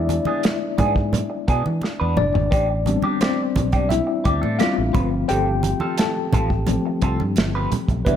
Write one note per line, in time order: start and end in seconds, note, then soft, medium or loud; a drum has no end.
0.00 0.19 E2 medium
0.00 2.13 G#3 soft
0.00 2.14 B3 soft
0.00 2.14 D4 medium
0.00 0.76 E4 medium
0.00 2.17 D5 medium
0.00 0.75 E5 medium
0.09 muted clean electric guitar stroke soft
0.09 closed hi-hat medium
0.09 muted conga soft
0.09 high conga medium
0.25 0.43 B3 soft
0.25 0.42 D4 soft
0.25 0.42 G#4 soft
0.25 high conga medium
0.43 muted clean electric guitar stroke soft
0.43 snare loud
0.43 closed hi-hat medium
0.78 1.22 G#2 medium
0.78 0.93 B3 soft
0.78 0.94 D4 medium
0.78 0.94 G#4 medium
0.78 kick medium
0.78 closed hi-hat medium
0.78 muted conga soft
0.78 high conga medium
0.78 low conga medium
0.95 muted clean electric guitar stroke soft
0.95 kick medium
1.12 muted clean electric guitar stroke soft
1.12 closed hi-hat medium
1.12 low conga medium
1.30 muted clean electric guitar stroke soft
1.48 1.63 B2 medium
1.48 1.67 B3 medium
1.48 1.64 D4 medium
1.48 1.63 G#4 medium
1.48 kick medium
1.48 closed hi-hat medium
1.65 1.80 E3 medium
1.65 muted clean electric guitar stroke soft
1.65 high conga medium
1.82 muted clean electric guitar stroke soft
1.82 snare medium
1.82 muted conga soft
2.00 2.15 E2 medium
2.00 2.16 B3 soft
2.00 2.17 D4 medium
2.00 2.18 B4 medium
2.17 2.33 F1 medium
2.17 2.87 D4 medium
2.17 3.24 D5 medium
2.17 muted clean electric guitar stroke soft
2.17 mid tom medium
2.17 low conga medium
2.34 2.50 G#1 medium
2.34 muted clean electric guitar stroke soft
2.34 floor tom medium
2.51 2.95 A1 medium
2.51 2.71 C4 medium
2.51 2.69 D4 medium
2.51 2.68 G4 medium
2.51 kick loud
2.51 closed hi-hat medium
2.69 muted clean electric guitar stroke soft
2.86 3.33 G3 medium
2.86 3.33 B3 soft
2.86 3.21 C4 soft
2.86 3.34 D4 soft
2.86 muted clean electric guitar stroke soft
2.86 closed hi-hat medium
2.86 high conga medium
3.02 3.20 C4 soft
3.02 3.19 D4 soft
3.02 3.19 G4 medium
3.02 high conga medium
3.21 3.40 C4 medium
3.21 3.87 C4 medium
3.21 3.41 D4 medium
3.21 3.41 G4 medium
3.21 3.93 C5 medium
3.21 snare loud
3.21 closed hi-hat medium
3.21 muted conga soft
3.56 4.00 B1 medium
3.56 muted clean electric guitar stroke soft
3.56 kick medium
3.56 closed hi-hat medium
3.56 high conga medium
3.56 low conga medium
3.72 3.88 C4 soft
3.72 3.88 D4 soft
3.72 3.88 G4 medium
3.72 kick medium
3.72 closed hi-hat soft
3.89 4.56 E4 medium
3.89 4.61 E5 medium
3.89 muted clean electric guitar stroke soft
3.89 closed hi-hat medium
3.89 low conga medium
4.07 muted clean electric guitar stroke soft
4.24 4.40 D2 medium
4.24 4.40 C4 soft
4.24 4.40 D4 medium
4.24 4.40 G4 medium
4.24 kick medium
4.24 closed hi-hat medium
4.24 muted conga soft
4.42 4.58 A2 medium
4.42 4.58 C4 soft
4.42 4.58 D4 medium
4.42 4.57 A4 medium
4.42 high conga medium
4.59 4.91 G3 soft
4.59 4.91 B3 soft
4.59 4.78 C4 medium
4.59 4.91 C4 soft
4.59 4.76 D4 medium
4.59 4.91 D4 soft
4.59 5.25 F4 medium
4.59 4.75 G4 medium
4.59 5.31 F5 medium
4.59 snare loud
4.59 closed hi-hat medium
4.76 4.94 A1 medium
4.76 muted clean electric guitar stroke soft
4.93 5.24 G1 medium
4.93 6.66 F3 soft
4.93 6.67 A3 soft
4.93 5.09 C4 medium
4.93 6.67 C4 medium
4.93 5.09 F4 soft
4.93 5.10 B4 medium
4.93 kick medium
4.93 closed hi-hat medium
4.93 muted conga soft
4.93 low conga medium
5.10 muted clean electric guitar stroke soft
5.28 5.73 G1 medium
5.28 5.48 C4 medium
5.28 5.48 F4 medium
5.28 5.95 G4 medium
5.28 5.48 A4 medium
5.28 6.00 G5 medium
5.28 closed hi-hat medium
5.63 muted clean electric guitar stroke soft
5.63 closed hi-hat medium
5.63 high conga medium
5.80 5.96 C4 soft
5.80 5.96 F4 soft
5.80 5.96 A4 medium
5.80 high conga medium
5.98 7.68 A4 medium
5.98 7.67 A5 medium
5.98 muted clean electric guitar stroke soft
5.98 snare loud
5.98 closed hi-hat medium
6.32 6.77 A1 medium
6.32 6.48 C4 soft
6.32 6.48 F4 medium
6.32 6.48 A4 medium
6.32 kick medium
6.32 closed hi-hat medium
6.32 muted conga soft
6.32 high conga medium
6.32 low conga medium
6.50 muted clean electric guitar stroke soft
6.50 kick medium
6.67 6.99 F3 soft
6.67 6.99 A3 soft
6.67 6.99 C4 soft
6.67 muted clean electric guitar stroke soft
6.67 closed hi-hat medium
6.67 low conga medium
6.86 muted clean electric guitar stroke soft
7.02 7.17 C2 medium
7.02 7.21 C4 medium
7.02 7.20 F4 medium
7.02 7.19 A4 medium
7.02 kick medium
7.02 closed hi-hat medium
7.20 7.35 G2 medium
7.20 muted clean electric guitar stroke soft
7.20 high conga medium
7.36 7.66 G1 medium
7.36 muted clean electric guitar stroke soft
7.36 snare loud
7.36 closed hi-hat medium
7.36 muted conga soft
7.55 7.71 C4 soft
7.55 7.71 F4 medium
7.55 7.72 B4 medium
7.72 muted clean electric guitar stroke soft
7.72 closed hi-hat medium
7.72 low conga medium
7.88 8.06 B1 medium
7.88 muted clean electric guitar stroke soft
7.88 kick medium
7.88 closed hi-hat soft
8.05 8.16 C2 medium
8.05 8.16 E3 soft
8.05 8.16 G3 medium
8.05 8.16 B3 medium
8.05 8.16 D4 soft
8.05 8.16 E4 medium
8.05 8.16 B4 medium
8.05 kick loud
8.05 closed hi-hat medium
8.05 muted conga soft